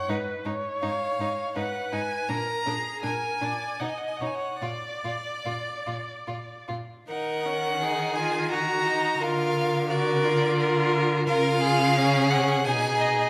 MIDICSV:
0, 0, Header, 1, 5, 480
1, 0, Start_track
1, 0, Tempo, 734394
1, 61, Time_signature, 3, 2, 24, 8
1, 1983, Tempo, 767263
1, 2463, Tempo, 819672
1, 4383, Tempo, 715990
1, 5343, Tempo, 688073
1, 7743, Tempo, 717703
1, 8642, End_track
2, 0, Start_track
2, 0, Title_t, "Violin"
2, 0, Program_c, 0, 40
2, 531, Note_on_c, 0, 77, 73
2, 991, Note_off_c, 0, 77, 0
2, 1020, Note_on_c, 0, 78, 77
2, 1255, Note_on_c, 0, 80, 81
2, 1265, Note_off_c, 0, 78, 0
2, 1492, Note_on_c, 0, 82, 90
2, 1502, Note_off_c, 0, 80, 0
2, 1974, Note_off_c, 0, 82, 0
2, 1978, Note_on_c, 0, 80, 76
2, 2458, Note_on_c, 0, 78, 56
2, 2467, Note_off_c, 0, 80, 0
2, 2511, Note_on_c, 0, 80, 55
2, 2520, Note_off_c, 0, 78, 0
2, 2564, Note_on_c, 0, 78, 53
2, 2573, Note_off_c, 0, 80, 0
2, 2620, Note_on_c, 0, 80, 55
2, 2629, Note_off_c, 0, 78, 0
2, 2676, Note_on_c, 0, 78, 56
2, 2685, Note_off_c, 0, 80, 0
2, 2730, Note_on_c, 0, 80, 55
2, 2739, Note_off_c, 0, 78, 0
2, 2781, Note_on_c, 0, 78, 65
2, 2790, Note_off_c, 0, 80, 0
2, 2940, Note_on_c, 0, 74, 76
2, 2948, Note_off_c, 0, 78, 0
2, 4151, Note_off_c, 0, 74, 0
2, 4381, Note_on_c, 0, 78, 105
2, 5103, Note_on_c, 0, 80, 90
2, 5113, Note_off_c, 0, 78, 0
2, 5334, Note_off_c, 0, 80, 0
2, 5338, Note_on_c, 0, 82, 98
2, 5834, Note_on_c, 0, 77, 106
2, 5845, Note_off_c, 0, 82, 0
2, 6308, Note_on_c, 0, 74, 93
2, 6319, Note_off_c, 0, 77, 0
2, 7026, Note_off_c, 0, 74, 0
2, 7264, Note_on_c, 0, 77, 127
2, 7976, Note_on_c, 0, 78, 105
2, 7986, Note_off_c, 0, 77, 0
2, 8206, Note_on_c, 0, 80, 105
2, 8216, Note_off_c, 0, 78, 0
2, 8446, Note_on_c, 0, 75, 88
2, 8456, Note_off_c, 0, 80, 0
2, 8642, Note_off_c, 0, 75, 0
2, 8642, End_track
3, 0, Start_track
3, 0, Title_t, "Viola"
3, 0, Program_c, 1, 41
3, 0, Note_on_c, 1, 73, 69
3, 63, Note_on_c, 1, 71, 57
3, 73, Note_off_c, 1, 73, 0
3, 299, Note_on_c, 1, 73, 69
3, 309, Note_off_c, 1, 71, 0
3, 1021, Note_on_c, 1, 71, 55
3, 1031, Note_off_c, 1, 73, 0
3, 1499, Note_off_c, 1, 71, 0
3, 1505, Note_on_c, 1, 70, 61
3, 1742, Note_on_c, 1, 68, 57
3, 1752, Note_off_c, 1, 70, 0
3, 1981, Note_off_c, 1, 68, 0
3, 1985, Note_on_c, 1, 70, 57
3, 2220, Note_on_c, 1, 74, 56
3, 2229, Note_off_c, 1, 70, 0
3, 2460, Note_on_c, 1, 75, 54
3, 2469, Note_off_c, 1, 74, 0
3, 2697, Note_on_c, 1, 73, 56
3, 2706, Note_off_c, 1, 75, 0
3, 2936, Note_off_c, 1, 73, 0
3, 2939, Note_on_c, 1, 74, 59
3, 4127, Note_off_c, 1, 74, 0
3, 4389, Note_on_c, 1, 63, 60
3, 4636, Note_on_c, 1, 61, 59
3, 4646, Note_off_c, 1, 63, 0
3, 4876, Note_on_c, 1, 63, 62
3, 4886, Note_off_c, 1, 61, 0
3, 5108, Note_off_c, 1, 63, 0
3, 5113, Note_on_c, 1, 65, 62
3, 5353, Note_on_c, 1, 66, 61
3, 5363, Note_off_c, 1, 65, 0
3, 5590, Note_on_c, 1, 63, 71
3, 5600, Note_off_c, 1, 66, 0
3, 5824, Note_off_c, 1, 63, 0
3, 5828, Note_on_c, 1, 65, 68
3, 6299, Note_off_c, 1, 65, 0
3, 6312, Note_on_c, 1, 66, 75
3, 6552, Note_on_c, 1, 65, 84
3, 6562, Note_off_c, 1, 66, 0
3, 7262, Note_off_c, 1, 65, 0
3, 7268, Note_on_c, 1, 65, 78
3, 7750, Note_on_c, 1, 61, 80
3, 7760, Note_off_c, 1, 65, 0
3, 7978, Note_off_c, 1, 61, 0
3, 7986, Note_on_c, 1, 61, 81
3, 8212, Note_off_c, 1, 61, 0
3, 8222, Note_on_c, 1, 63, 60
3, 8642, Note_off_c, 1, 63, 0
3, 8642, End_track
4, 0, Start_track
4, 0, Title_t, "Violin"
4, 0, Program_c, 2, 40
4, 60, Note_on_c, 2, 63, 56
4, 112, Note_off_c, 2, 63, 0
4, 297, Note_on_c, 2, 63, 47
4, 349, Note_off_c, 2, 63, 0
4, 540, Note_on_c, 2, 63, 52
4, 593, Note_off_c, 2, 63, 0
4, 788, Note_on_c, 2, 63, 50
4, 840, Note_off_c, 2, 63, 0
4, 1019, Note_on_c, 2, 63, 53
4, 1071, Note_off_c, 2, 63, 0
4, 1258, Note_on_c, 2, 63, 50
4, 1310, Note_off_c, 2, 63, 0
4, 1498, Note_on_c, 2, 62, 49
4, 1551, Note_off_c, 2, 62, 0
4, 1740, Note_on_c, 2, 62, 49
4, 1793, Note_off_c, 2, 62, 0
4, 1981, Note_on_c, 2, 62, 49
4, 2031, Note_off_c, 2, 62, 0
4, 2219, Note_on_c, 2, 62, 46
4, 2270, Note_off_c, 2, 62, 0
4, 2467, Note_on_c, 2, 63, 45
4, 2514, Note_off_c, 2, 63, 0
4, 2706, Note_on_c, 2, 63, 44
4, 2753, Note_off_c, 2, 63, 0
4, 2943, Note_on_c, 2, 65, 44
4, 2990, Note_off_c, 2, 65, 0
4, 3192, Note_on_c, 2, 65, 41
4, 3238, Note_off_c, 2, 65, 0
4, 3431, Note_on_c, 2, 65, 44
4, 3478, Note_off_c, 2, 65, 0
4, 3673, Note_on_c, 2, 65, 40
4, 3719, Note_off_c, 2, 65, 0
4, 3912, Note_on_c, 2, 65, 42
4, 3959, Note_off_c, 2, 65, 0
4, 4150, Note_on_c, 2, 65, 43
4, 4197, Note_off_c, 2, 65, 0
4, 4387, Note_on_c, 2, 70, 56
4, 4846, Note_off_c, 2, 70, 0
4, 4871, Note_on_c, 2, 68, 62
4, 5332, Note_off_c, 2, 68, 0
4, 5340, Note_on_c, 2, 66, 64
4, 5825, Note_on_c, 2, 70, 64
4, 5836, Note_off_c, 2, 66, 0
4, 6298, Note_off_c, 2, 70, 0
4, 6302, Note_on_c, 2, 70, 77
4, 6776, Note_off_c, 2, 70, 0
4, 6786, Note_on_c, 2, 70, 82
4, 7250, Note_off_c, 2, 70, 0
4, 7264, Note_on_c, 2, 70, 89
4, 7496, Note_off_c, 2, 70, 0
4, 7503, Note_on_c, 2, 68, 78
4, 8198, Note_off_c, 2, 68, 0
4, 8213, Note_on_c, 2, 68, 72
4, 8642, Note_off_c, 2, 68, 0
4, 8642, End_track
5, 0, Start_track
5, 0, Title_t, "Cello"
5, 0, Program_c, 3, 42
5, 56, Note_on_c, 3, 44, 66
5, 108, Note_off_c, 3, 44, 0
5, 295, Note_on_c, 3, 44, 58
5, 347, Note_off_c, 3, 44, 0
5, 541, Note_on_c, 3, 44, 59
5, 593, Note_off_c, 3, 44, 0
5, 779, Note_on_c, 3, 44, 56
5, 831, Note_off_c, 3, 44, 0
5, 1018, Note_on_c, 3, 44, 59
5, 1071, Note_off_c, 3, 44, 0
5, 1256, Note_on_c, 3, 44, 57
5, 1309, Note_off_c, 3, 44, 0
5, 1497, Note_on_c, 3, 46, 60
5, 1550, Note_off_c, 3, 46, 0
5, 1740, Note_on_c, 3, 46, 51
5, 1792, Note_off_c, 3, 46, 0
5, 1982, Note_on_c, 3, 46, 52
5, 2032, Note_off_c, 3, 46, 0
5, 2222, Note_on_c, 3, 46, 50
5, 2272, Note_off_c, 3, 46, 0
5, 2464, Note_on_c, 3, 47, 47
5, 2511, Note_off_c, 3, 47, 0
5, 2697, Note_on_c, 3, 47, 51
5, 2744, Note_off_c, 3, 47, 0
5, 2940, Note_on_c, 3, 46, 54
5, 2987, Note_off_c, 3, 46, 0
5, 3189, Note_on_c, 3, 46, 48
5, 3235, Note_off_c, 3, 46, 0
5, 3431, Note_on_c, 3, 46, 51
5, 3478, Note_off_c, 3, 46, 0
5, 3675, Note_on_c, 3, 46, 48
5, 3722, Note_off_c, 3, 46, 0
5, 3915, Note_on_c, 3, 46, 46
5, 3962, Note_off_c, 3, 46, 0
5, 4156, Note_on_c, 3, 46, 50
5, 4203, Note_off_c, 3, 46, 0
5, 4386, Note_on_c, 3, 51, 67
5, 5799, Note_off_c, 3, 51, 0
5, 5830, Note_on_c, 3, 50, 78
5, 7261, Note_on_c, 3, 49, 95
5, 7272, Note_off_c, 3, 50, 0
5, 8218, Note_on_c, 3, 47, 76
5, 8228, Note_off_c, 3, 49, 0
5, 8642, Note_off_c, 3, 47, 0
5, 8642, End_track
0, 0, End_of_file